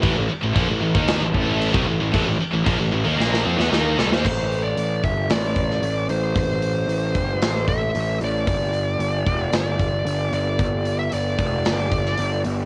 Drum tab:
CC |x---x---x---x---|x---x-----------|x---------------|----------------|
HH |----------------|----------------|--o-o-o-o-o-o-o-|o-o-o-o-o-o-o-o-|
SD |--------o-------|--------oo-oo-oo|--------o--o----|--------o-------|
BD |o---o--o--o--o--|o---o-----------|o-----o---o-----|o-----o---o-----|

CC |----------------|----------------|
HH |o-o-o-o-o-o-o-o-|o-o-o-o-o-o-o-o-|
SD |--------o-------|--------o--o----|
BD |o-----o---o-----|o-----o---o-----|